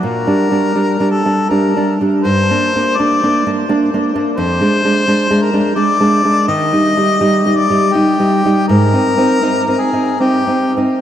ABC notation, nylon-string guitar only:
X:1
M:3/4
L:1/8
Q:1/4=82
K:Gm
V:1 name="Nylon-string guitar"
(3B,, [G,D] [G,D] (3[G,D] [G,D] [G,D] (3[G,D] [G,D] [G,D] | (3G,, [B,D] [B,D] (3[B,D] [B,D] [B,D] (3[B,D] [B,D] [B,D] | [K:Eb] (3F,, [A,D] [A,D] (3[A,D] [A,D] [A,D] (3[A,D] [A,D] [A,D] | (3E, [G,E] [G,E] (3[G,E] [G,E] [G,E] (3[G,E] [G,E] [G,E] |
(3A,, [CE] [CE] (3[CE] [CE] [CE] (3[CE] [CE] [CE] |]